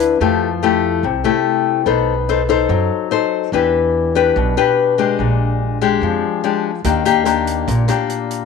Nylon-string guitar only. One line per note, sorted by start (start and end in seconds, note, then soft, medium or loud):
0.00 0.20 D3 soft
0.00 0.18 D4 medium
0.00 0.18 E4 medium
0.00 0.18 B4 medium
0.21 1.02 F3 soft
0.21 0.48 A3 soft
0.21 0.48 E4 soft
0.21 0.48 G4 medium
0.63 1.04 A3 medium
0.63 1.04 E4 medium
0.63 1.04 G4 medium
1.04 1.85 C3 medium
1.24 1.83 A3 medium
1.24 1.84 E4 medium
1.24 1.84 G4 medium
1.86 2.67 B3 medium
1.86 2.13 D#4 medium
1.86 2.13 A4 soft
1.86 2.14 C5 medium
2.29 2.41 D#4 medium
2.29 2.41 A4 medium
2.29 2.41 C5 medium
2.49 3.08 D#4 medium
2.49 3.08 A4 medium
2.49 3.08 C5 medium
2.70 3.51 F#3 medium
3.11 3.51 D#4 medium
3.11 3.51 A4 medium
3.11 3.51 C5 medium
3.53 4.34 E3 soft
3.53 4.12 D4 soft
3.53 4.12 G4 soft
3.53 4.12 B4 medium
4.15 4.53 D4 medium
4.15 4.54 G4 medium
4.15 4.54 B4 medium
4.37 5.17 B2 medium
4.57 4.95 D4 medium
4.57 4.95 G4 medium
4.57 4.95 B4 medium
4.98 5.78 G#3 medium
4.98 5.78 D4 medium
4.98 5.78 G4 medium
5.20 6.00 A#2 soft
5.81 6.40 G#3 medium
5.81 6.40 D4 medium
5.81 6.41 G4 medium
6.03 6.83 F3 medium
6.44 6.70 G#3 medium
6.44 6.70 D4 medium
6.44 6.71 G4 medium
6.84 7.65 D#3 soft
6.84 7.02 A#3 soft
6.84 7.02 D4 soft
6.84 7.03 G4 medium
7.05 7.23 A#3 medium
7.05 7.23 D4 medium
7.05 7.23 G4 medium
7.25 7.85 A#3 medium
7.25 7.85 D4 medium
7.25 7.85 G4 medium
7.68 8.45 A#2 medium
7.88 8.45 A#3 medium
7.88 8.45 D4 medium
7.88 8.45 G4 medium